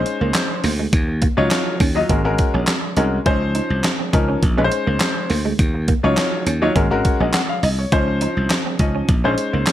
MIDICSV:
0, 0, Header, 1, 6, 480
1, 0, Start_track
1, 0, Tempo, 582524
1, 767, Time_signature, 4, 2, 24, 8
1, 8010, End_track
2, 0, Start_track
2, 0, Title_t, "Grand piano"
2, 0, Program_c, 0, 0
2, 0, Note_on_c, 0, 56, 85
2, 0, Note_on_c, 0, 61, 81
2, 0, Note_on_c, 0, 63, 86
2, 0, Note_on_c, 0, 72, 94
2, 558, Note_off_c, 0, 56, 0
2, 559, Note_off_c, 0, 61, 0
2, 560, Note_off_c, 0, 63, 0
2, 561, Note_off_c, 0, 72, 0
2, 1128, Note_on_c, 0, 54, 94
2, 1130, Note_on_c, 0, 63, 87
2, 1132, Note_on_c, 0, 65, 91
2, 1135, Note_on_c, 0, 73, 99
2, 1443, Note_off_c, 0, 54, 0
2, 1444, Note_off_c, 0, 63, 0
2, 1444, Note_off_c, 0, 65, 0
2, 1446, Note_off_c, 0, 73, 0
2, 1607, Note_on_c, 0, 54, 89
2, 1610, Note_on_c, 0, 63, 78
2, 1612, Note_on_c, 0, 65, 76
2, 1615, Note_on_c, 0, 75, 93
2, 1685, Note_off_c, 0, 54, 0
2, 1686, Note_off_c, 0, 63, 0
2, 1687, Note_off_c, 0, 65, 0
2, 1689, Note_off_c, 0, 75, 0
2, 1723, Note_on_c, 0, 56, 85
2, 1725, Note_on_c, 0, 61, 65
2, 1728, Note_on_c, 0, 66, 73
2, 1730, Note_on_c, 0, 70, 89
2, 1809, Note_off_c, 0, 56, 0
2, 1810, Note_off_c, 0, 61, 0
2, 1811, Note_off_c, 0, 66, 0
2, 1812, Note_off_c, 0, 70, 0
2, 1848, Note_on_c, 0, 56, 87
2, 1852, Note_on_c, 0, 61, 73
2, 1854, Note_on_c, 0, 66, 74
2, 1856, Note_on_c, 0, 70, 104
2, 2241, Note_off_c, 0, 56, 0
2, 2243, Note_off_c, 0, 61, 0
2, 2244, Note_off_c, 0, 66, 0
2, 2245, Note_off_c, 0, 70, 0
2, 2443, Note_on_c, 0, 56, 82
2, 2444, Note_on_c, 0, 61, 75
2, 2447, Note_on_c, 0, 66, 65
2, 2450, Note_on_c, 0, 70, 87
2, 2608, Note_off_c, 0, 56, 0
2, 2609, Note_off_c, 0, 61, 0
2, 2610, Note_off_c, 0, 66, 0
2, 2611, Note_off_c, 0, 70, 0
2, 2682, Note_on_c, 0, 53, 86
2, 2684, Note_on_c, 0, 61, 78
2, 2687, Note_on_c, 0, 63, 76
2, 2689, Note_on_c, 0, 72, 98
2, 3159, Note_off_c, 0, 53, 0
2, 3160, Note_off_c, 0, 61, 0
2, 3162, Note_off_c, 0, 63, 0
2, 3162, Note_off_c, 0, 72, 0
2, 3402, Note_on_c, 0, 53, 81
2, 3403, Note_on_c, 0, 61, 76
2, 3406, Note_on_c, 0, 63, 79
2, 3408, Note_on_c, 0, 70, 92
2, 3642, Note_off_c, 0, 53, 0
2, 3642, Note_off_c, 0, 61, 0
2, 3644, Note_off_c, 0, 63, 0
2, 3645, Note_off_c, 0, 70, 0
2, 3768, Note_on_c, 0, 56, 86
2, 3769, Note_on_c, 0, 61, 75
2, 3773, Note_on_c, 0, 63, 75
2, 3775, Note_on_c, 0, 71, 75
2, 3825, Note_off_c, 0, 71, 0
2, 3827, Note_on_c, 0, 72, 94
2, 4398, Note_off_c, 0, 56, 0
2, 4398, Note_off_c, 0, 61, 0
2, 4400, Note_off_c, 0, 63, 0
2, 4427, Note_off_c, 0, 72, 0
2, 4971, Note_on_c, 0, 54, 84
2, 4974, Note_on_c, 0, 63, 86
2, 4975, Note_on_c, 0, 65, 85
2, 4979, Note_on_c, 0, 73, 98
2, 5284, Note_off_c, 0, 54, 0
2, 5286, Note_off_c, 0, 63, 0
2, 5286, Note_off_c, 0, 65, 0
2, 5288, Note_off_c, 0, 73, 0
2, 5452, Note_on_c, 0, 54, 96
2, 5454, Note_on_c, 0, 63, 90
2, 5456, Note_on_c, 0, 65, 82
2, 5459, Note_on_c, 0, 73, 96
2, 5528, Note_off_c, 0, 54, 0
2, 5528, Note_off_c, 0, 63, 0
2, 5530, Note_off_c, 0, 65, 0
2, 5531, Note_off_c, 0, 73, 0
2, 5565, Note_on_c, 0, 56, 83
2, 5568, Note_on_c, 0, 61, 77
2, 5569, Note_on_c, 0, 66, 71
2, 5571, Note_on_c, 0, 70, 89
2, 5650, Note_off_c, 0, 56, 0
2, 5651, Note_off_c, 0, 61, 0
2, 5652, Note_off_c, 0, 66, 0
2, 5653, Note_off_c, 0, 70, 0
2, 5690, Note_on_c, 0, 56, 94
2, 5692, Note_on_c, 0, 61, 72
2, 5695, Note_on_c, 0, 66, 89
2, 5697, Note_on_c, 0, 70, 100
2, 5807, Note_on_c, 0, 73, 62
2, 5928, Note_off_c, 0, 73, 0
2, 5935, Note_on_c, 0, 75, 71
2, 6042, Note_off_c, 0, 75, 0
2, 6048, Note_on_c, 0, 78, 75
2, 6082, Note_off_c, 0, 56, 0
2, 6083, Note_off_c, 0, 61, 0
2, 6085, Note_off_c, 0, 66, 0
2, 6085, Note_off_c, 0, 70, 0
2, 6169, Note_off_c, 0, 78, 0
2, 6175, Note_on_c, 0, 77, 73
2, 6282, Note_off_c, 0, 77, 0
2, 6289, Note_on_c, 0, 75, 67
2, 6409, Note_off_c, 0, 75, 0
2, 6417, Note_on_c, 0, 73, 59
2, 6525, Note_on_c, 0, 53, 94
2, 6527, Note_on_c, 0, 61, 84
2, 6528, Note_on_c, 0, 63, 82
2, 6531, Note_on_c, 0, 72, 93
2, 6644, Note_off_c, 0, 73, 0
2, 7001, Note_off_c, 0, 53, 0
2, 7002, Note_off_c, 0, 61, 0
2, 7002, Note_off_c, 0, 63, 0
2, 7004, Note_off_c, 0, 72, 0
2, 7247, Note_on_c, 0, 53, 79
2, 7248, Note_on_c, 0, 61, 72
2, 7250, Note_on_c, 0, 63, 77
2, 7252, Note_on_c, 0, 75, 83
2, 7484, Note_off_c, 0, 53, 0
2, 7485, Note_off_c, 0, 61, 0
2, 7486, Note_off_c, 0, 63, 0
2, 7487, Note_off_c, 0, 75, 0
2, 7615, Note_on_c, 0, 56, 81
2, 7617, Note_on_c, 0, 61, 77
2, 7619, Note_on_c, 0, 63, 80
2, 7622, Note_on_c, 0, 72, 86
2, 8010, Note_off_c, 0, 56, 0
2, 8010, Note_off_c, 0, 61, 0
2, 8010, Note_off_c, 0, 63, 0
2, 8010, Note_off_c, 0, 72, 0
2, 8010, End_track
3, 0, Start_track
3, 0, Title_t, "Clean electric guitar"
3, 0, Program_c, 1, 27
3, 175, Note_on_c, 1, 58, 70
3, 262, Note_off_c, 1, 58, 0
3, 528, Note_on_c, 1, 58, 87
3, 627, Note_off_c, 1, 58, 0
3, 655, Note_on_c, 1, 56, 70
3, 742, Note_off_c, 1, 56, 0
3, 1006, Note_on_c, 1, 58, 83
3, 1105, Note_off_c, 1, 58, 0
3, 1132, Note_on_c, 1, 61, 70
3, 1221, Note_off_c, 1, 61, 0
3, 1485, Note_on_c, 1, 61, 85
3, 1585, Note_off_c, 1, 61, 0
3, 1612, Note_on_c, 1, 63, 83
3, 1701, Note_off_c, 1, 63, 0
3, 1726, Note_on_c, 1, 58, 70
3, 1826, Note_off_c, 1, 58, 0
3, 2093, Note_on_c, 1, 61, 75
3, 2181, Note_off_c, 1, 61, 0
3, 2445, Note_on_c, 1, 63, 71
3, 2545, Note_off_c, 1, 63, 0
3, 2688, Note_on_c, 1, 61, 80
3, 2787, Note_off_c, 1, 61, 0
3, 2925, Note_on_c, 1, 63, 73
3, 3025, Note_off_c, 1, 63, 0
3, 3292, Note_on_c, 1, 60, 66
3, 3381, Note_off_c, 1, 60, 0
3, 3531, Note_on_c, 1, 61, 79
3, 3620, Note_off_c, 1, 61, 0
3, 3771, Note_on_c, 1, 61, 95
3, 3860, Note_off_c, 1, 61, 0
3, 4010, Note_on_c, 1, 58, 71
3, 4100, Note_off_c, 1, 58, 0
3, 4366, Note_on_c, 1, 58, 83
3, 4465, Note_off_c, 1, 58, 0
3, 4492, Note_on_c, 1, 56, 79
3, 4581, Note_off_c, 1, 56, 0
3, 4847, Note_on_c, 1, 58, 74
3, 4946, Note_off_c, 1, 58, 0
3, 4974, Note_on_c, 1, 61, 70
3, 5062, Note_off_c, 1, 61, 0
3, 5330, Note_on_c, 1, 61, 84
3, 5428, Note_off_c, 1, 61, 0
3, 5456, Note_on_c, 1, 63, 86
3, 5543, Note_off_c, 1, 63, 0
3, 5569, Note_on_c, 1, 58, 71
3, 5667, Note_off_c, 1, 58, 0
3, 5937, Note_on_c, 1, 61, 79
3, 6024, Note_off_c, 1, 61, 0
3, 6290, Note_on_c, 1, 63, 80
3, 6388, Note_off_c, 1, 63, 0
3, 6529, Note_on_c, 1, 61, 82
3, 6628, Note_off_c, 1, 61, 0
3, 6771, Note_on_c, 1, 63, 84
3, 6868, Note_off_c, 1, 63, 0
3, 7137, Note_on_c, 1, 60, 69
3, 7224, Note_off_c, 1, 60, 0
3, 7372, Note_on_c, 1, 61, 85
3, 7461, Note_off_c, 1, 61, 0
3, 7614, Note_on_c, 1, 61, 88
3, 7702, Note_off_c, 1, 61, 0
3, 7856, Note_on_c, 1, 58, 79
3, 7943, Note_off_c, 1, 58, 0
3, 8010, End_track
4, 0, Start_track
4, 0, Title_t, "Slap bass"
4, 0, Program_c, 2, 36
4, 173, Note_on_c, 2, 37, 92
4, 258, Note_off_c, 2, 37, 0
4, 526, Note_on_c, 2, 38, 92
4, 706, Note_off_c, 2, 38, 0
4, 765, Note_on_c, 2, 39, 100
4, 1041, Note_off_c, 2, 39, 0
4, 1135, Note_on_c, 2, 37, 90
4, 1219, Note_off_c, 2, 37, 0
4, 1485, Note_on_c, 2, 39, 77
4, 1666, Note_off_c, 2, 39, 0
4, 1727, Note_on_c, 2, 32, 114
4, 1822, Note_off_c, 2, 32, 0
4, 1851, Note_on_c, 2, 32, 91
4, 1937, Note_off_c, 2, 32, 0
4, 2093, Note_on_c, 2, 34, 82
4, 2178, Note_off_c, 2, 34, 0
4, 2444, Note_on_c, 2, 36, 78
4, 2625, Note_off_c, 2, 36, 0
4, 2687, Note_on_c, 2, 37, 112
4, 2962, Note_off_c, 2, 37, 0
4, 3050, Note_on_c, 2, 36, 99
4, 3136, Note_off_c, 2, 36, 0
4, 3406, Note_on_c, 2, 37, 81
4, 3587, Note_off_c, 2, 37, 0
4, 3647, Note_on_c, 2, 34, 110
4, 3743, Note_off_c, 2, 34, 0
4, 3772, Note_on_c, 2, 34, 89
4, 3858, Note_off_c, 2, 34, 0
4, 4013, Note_on_c, 2, 37, 89
4, 4098, Note_off_c, 2, 37, 0
4, 4369, Note_on_c, 2, 38, 90
4, 4548, Note_off_c, 2, 38, 0
4, 4606, Note_on_c, 2, 39, 96
4, 4882, Note_off_c, 2, 39, 0
4, 4975, Note_on_c, 2, 37, 93
4, 5059, Note_off_c, 2, 37, 0
4, 5327, Note_on_c, 2, 39, 90
4, 5507, Note_off_c, 2, 39, 0
4, 5567, Note_on_c, 2, 32, 99
4, 5663, Note_off_c, 2, 32, 0
4, 5696, Note_on_c, 2, 32, 87
4, 5780, Note_off_c, 2, 32, 0
4, 5934, Note_on_c, 2, 34, 84
4, 6019, Note_off_c, 2, 34, 0
4, 6286, Note_on_c, 2, 36, 95
4, 6467, Note_off_c, 2, 36, 0
4, 6527, Note_on_c, 2, 37, 107
4, 6802, Note_off_c, 2, 37, 0
4, 6895, Note_on_c, 2, 36, 90
4, 6980, Note_off_c, 2, 36, 0
4, 7245, Note_on_c, 2, 37, 88
4, 7426, Note_off_c, 2, 37, 0
4, 7487, Note_on_c, 2, 34, 112
4, 7582, Note_off_c, 2, 34, 0
4, 7615, Note_on_c, 2, 34, 92
4, 7700, Note_off_c, 2, 34, 0
4, 7856, Note_on_c, 2, 37, 82
4, 7940, Note_off_c, 2, 37, 0
4, 8010, End_track
5, 0, Start_track
5, 0, Title_t, "Muted clean electric guitar strokes"
5, 48, Note_on_c, 9, 29, 43
5, 131, Note_off_c, 9, 29, 0
5, 289, Note_on_c, 9, 29, 42
5, 371, Note_off_c, 9, 29, 0
5, 893, Note_on_c, 9, 29, 46
5, 976, Note_off_c, 9, 29, 0
5, 1246, Note_on_c, 9, 29, 46
5, 1328, Note_off_c, 9, 29, 0
5, 1855, Note_on_c, 9, 29, 46
5, 1937, Note_off_c, 9, 29, 0
5, 2814, Note_on_c, 9, 29, 43
5, 2896, Note_off_c, 9, 29, 0
5, 3407, Note_on_c, 9, 29, 44
5, 3489, Note_off_c, 9, 29, 0
5, 3883, Note_on_c, 9, 29, 45
5, 3965, Note_off_c, 9, 29, 0
5, 4124, Note_on_c, 9, 29, 43
5, 4206, Note_off_c, 9, 29, 0
5, 4732, Note_on_c, 9, 29, 47
5, 4814, Note_off_c, 9, 29, 0
5, 5088, Note_on_c, 9, 29, 49
5, 5171, Note_off_c, 9, 29, 0
5, 5697, Note_on_c, 9, 29, 48
5, 5779, Note_off_c, 9, 29, 0
5, 6657, Note_on_c, 9, 29, 48
5, 6740, Note_off_c, 9, 29, 0
5, 7248, Note_on_c, 9, 29, 47
5, 7330, Note_off_c, 9, 29, 0
5, 7726, Note_on_c, 9, 29, 41
5, 7808, Note_off_c, 9, 29, 0
5, 7967, Note_on_c, 9, 29, 46
5, 8010, Note_off_c, 9, 29, 0
5, 8010, End_track
6, 0, Start_track
6, 0, Title_t, "Drums"
6, 48, Note_on_c, 9, 42, 70
6, 130, Note_off_c, 9, 42, 0
6, 284, Note_on_c, 9, 39, 104
6, 286, Note_on_c, 9, 38, 118
6, 290, Note_on_c, 9, 42, 96
6, 367, Note_off_c, 9, 39, 0
6, 368, Note_off_c, 9, 38, 0
6, 372, Note_off_c, 9, 42, 0
6, 524, Note_on_c, 9, 46, 67
6, 607, Note_off_c, 9, 46, 0
6, 765, Note_on_c, 9, 42, 84
6, 766, Note_on_c, 9, 36, 112
6, 847, Note_off_c, 9, 42, 0
6, 848, Note_off_c, 9, 36, 0
6, 1003, Note_on_c, 9, 42, 86
6, 1007, Note_on_c, 9, 36, 96
6, 1085, Note_off_c, 9, 42, 0
6, 1089, Note_off_c, 9, 36, 0
6, 1245, Note_on_c, 9, 39, 96
6, 1246, Note_on_c, 9, 38, 113
6, 1246, Note_on_c, 9, 42, 83
6, 1327, Note_off_c, 9, 39, 0
6, 1328, Note_off_c, 9, 38, 0
6, 1329, Note_off_c, 9, 42, 0
6, 1484, Note_on_c, 9, 46, 86
6, 1486, Note_on_c, 9, 36, 93
6, 1567, Note_off_c, 9, 46, 0
6, 1568, Note_off_c, 9, 36, 0
6, 1726, Note_on_c, 9, 42, 77
6, 1727, Note_on_c, 9, 36, 106
6, 1808, Note_off_c, 9, 42, 0
6, 1809, Note_off_c, 9, 36, 0
6, 1965, Note_on_c, 9, 42, 71
6, 1968, Note_on_c, 9, 36, 94
6, 2047, Note_off_c, 9, 42, 0
6, 2051, Note_off_c, 9, 36, 0
6, 2203, Note_on_c, 9, 39, 92
6, 2205, Note_on_c, 9, 38, 122
6, 2209, Note_on_c, 9, 42, 94
6, 2286, Note_off_c, 9, 39, 0
6, 2287, Note_off_c, 9, 38, 0
6, 2291, Note_off_c, 9, 42, 0
6, 2444, Note_on_c, 9, 42, 68
6, 2526, Note_off_c, 9, 42, 0
6, 2685, Note_on_c, 9, 42, 74
6, 2686, Note_on_c, 9, 36, 109
6, 2768, Note_off_c, 9, 36, 0
6, 2768, Note_off_c, 9, 42, 0
6, 2924, Note_on_c, 9, 42, 93
6, 3007, Note_off_c, 9, 42, 0
6, 3166, Note_on_c, 9, 39, 81
6, 3167, Note_on_c, 9, 38, 114
6, 3167, Note_on_c, 9, 42, 87
6, 3248, Note_off_c, 9, 39, 0
6, 3249, Note_off_c, 9, 38, 0
6, 3249, Note_off_c, 9, 42, 0
6, 3406, Note_on_c, 9, 36, 90
6, 3407, Note_on_c, 9, 42, 79
6, 3489, Note_off_c, 9, 36, 0
6, 3489, Note_off_c, 9, 42, 0
6, 3647, Note_on_c, 9, 36, 106
6, 3647, Note_on_c, 9, 42, 84
6, 3730, Note_off_c, 9, 36, 0
6, 3730, Note_off_c, 9, 42, 0
6, 3886, Note_on_c, 9, 42, 68
6, 3968, Note_off_c, 9, 42, 0
6, 4123, Note_on_c, 9, 39, 92
6, 4125, Note_on_c, 9, 38, 113
6, 4129, Note_on_c, 9, 42, 93
6, 4206, Note_off_c, 9, 39, 0
6, 4207, Note_off_c, 9, 38, 0
6, 4212, Note_off_c, 9, 42, 0
6, 4365, Note_on_c, 9, 46, 60
6, 4447, Note_off_c, 9, 46, 0
6, 4607, Note_on_c, 9, 36, 113
6, 4608, Note_on_c, 9, 42, 84
6, 4690, Note_off_c, 9, 36, 0
6, 4690, Note_off_c, 9, 42, 0
6, 4845, Note_on_c, 9, 42, 92
6, 4848, Note_on_c, 9, 36, 91
6, 4927, Note_off_c, 9, 42, 0
6, 4930, Note_off_c, 9, 36, 0
6, 5087, Note_on_c, 9, 39, 87
6, 5089, Note_on_c, 9, 38, 103
6, 5089, Note_on_c, 9, 42, 81
6, 5170, Note_off_c, 9, 39, 0
6, 5171, Note_off_c, 9, 38, 0
6, 5171, Note_off_c, 9, 42, 0
6, 5328, Note_on_c, 9, 42, 85
6, 5410, Note_off_c, 9, 42, 0
6, 5568, Note_on_c, 9, 36, 103
6, 5568, Note_on_c, 9, 42, 77
6, 5650, Note_off_c, 9, 36, 0
6, 5650, Note_off_c, 9, 42, 0
6, 5807, Note_on_c, 9, 42, 71
6, 5810, Note_on_c, 9, 36, 99
6, 5890, Note_off_c, 9, 42, 0
6, 5892, Note_off_c, 9, 36, 0
6, 6046, Note_on_c, 9, 39, 96
6, 6047, Note_on_c, 9, 38, 123
6, 6052, Note_on_c, 9, 42, 99
6, 6128, Note_off_c, 9, 39, 0
6, 6130, Note_off_c, 9, 38, 0
6, 6134, Note_off_c, 9, 42, 0
6, 6287, Note_on_c, 9, 46, 69
6, 6370, Note_off_c, 9, 46, 0
6, 6528, Note_on_c, 9, 36, 110
6, 6528, Note_on_c, 9, 42, 86
6, 6610, Note_off_c, 9, 36, 0
6, 6611, Note_off_c, 9, 42, 0
6, 6766, Note_on_c, 9, 42, 86
6, 6848, Note_off_c, 9, 42, 0
6, 7007, Note_on_c, 9, 39, 88
6, 7008, Note_on_c, 9, 38, 114
6, 7008, Note_on_c, 9, 42, 81
6, 7089, Note_off_c, 9, 39, 0
6, 7090, Note_off_c, 9, 38, 0
6, 7090, Note_off_c, 9, 42, 0
6, 7245, Note_on_c, 9, 42, 72
6, 7247, Note_on_c, 9, 36, 86
6, 7327, Note_off_c, 9, 42, 0
6, 7329, Note_off_c, 9, 36, 0
6, 7487, Note_on_c, 9, 42, 74
6, 7488, Note_on_c, 9, 36, 112
6, 7569, Note_off_c, 9, 42, 0
6, 7570, Note_off_c, 9, 36, 0
6, 7727, Note_on_c, 9, 42, 76
6, 7809, Note_off_c, 9, 42, 0
6, 7966, Note_on_c, 9, 39, 87
6, 7968, Note_on_c, 9, 38, 124
6, 7972, Note_on_c, 9, 42, 95
6, 8010, Note_off_c, 9, 38, 0
6, 8010, Note_off_c, 9, 39, 0
6, 8010, Note_off_c, 9, 42, 0
6, 8010, End_track
0, 0, End_of_file